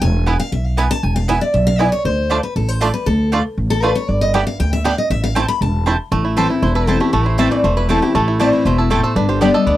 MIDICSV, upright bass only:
0, 0, Header, 1, 2, 480
1, 0, Start_track
1, 0, Key_signature, 0, "minor"
1, 0, Tempo, 254022
1, 34, Time_signature, 4, 2, 24, 8
1, 18465, End_track
2, 0, Start_track
2, 0, Title_t, "Upright bass"
2, 0, Program_c, 0, 32
2, 21, Note_on_c, 0, 28, 98
2, 660, Note_off_c, 0, 28, 0
2, 984, Note_on_c, 0, 35, 90
2, 1622, Note_off_c, 0, 35, 0
2, 1949, Note_on_c, 0, 28, 99
2, 2586, Note_off_c, 0, 28, 0
2, 2907, Note_on_c, 0, 35, 93
2, 3545, Note_off_c, 0, 35, 0
2, 3869, Note_on_c, 0, 38, 93
2, 4507, Note_off_c, 0, 38, 0
2, 4832, Note_on_c, 0, 33, 93
2, 5469, Note_off_c, 0, 33, 0
2, 5792, Note_on_c, 0, 38, 109
2, 6430, Note_off_c, 0, 38, 0
2, 6756, Note_on_c, 0, 33, 93
2, 7393, Note_off_c, 0, 33, 0
2, 7722, Note_on_c, 0, 31, 99
2, 8357, Note_off_c, 0, 31, 0
2, 8685, Note_on_c, 0, 38, 87
2, 9319, Note_off_c, 0, 38, 0
2, 9641, Note_on_c, 0, 33, 98
2, 10277, Note_off_c, 0, 33, 0
2, 10598, Note_on_c, 0, 28, 92
2, 11234, Note_off_c, 0, 28, 0
2, 11556, Note_on_c, 0, 33, 107
2, 12192, Note_off_c, 0, 33, 0
2, 12516, Note_on_c, 0, 28, 97
2, 13153, Note_off_c, 0, 28, 0
2, 13473, Note_on_c, 0, 33, 94
2, 14110, Note_off_c, 0, 33, 0
2, 14433, Note_on_c, 0, 28, 92
2, 15069, Note_off_c, 0, 28, 0
2, 15397, Note_on_c, 0, 33, 110
2, 16031, Note_off_c, 0, 33, 0
2, 16347, Note_on_c, 0, 28, 91
2, 16984, Note_off_c, 0, 28, 0
2, 17304, Note_on_c, 0, 31, 100
2, 17941, Note_off_c, 0, 31, 0
2, 18262, Note_on_c, 0, 38, 91
2, 18465, Note_off_c, 0, 38, 0
2, 18465, End_track
0, 0, End_of_file